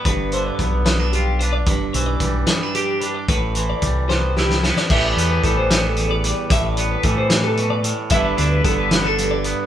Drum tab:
CC |------------|------------|------------|x-----------|
HH |x-x-x-x-x-x-|x-x-x-x-x-x-|x-x-x-------|--x-x-x-x-x-|
SD |------o-----|------o-----|------o-oooo|------o-----|
BD |o---o-------|o---o-------|o---o-------|o---o-------|

CC |------------|------------|
HH |x-x-x-x-x-x-|x-x-x-x-x-x-|
SD |------o-----|------o-----|
BD |o---o-------|o---o-------|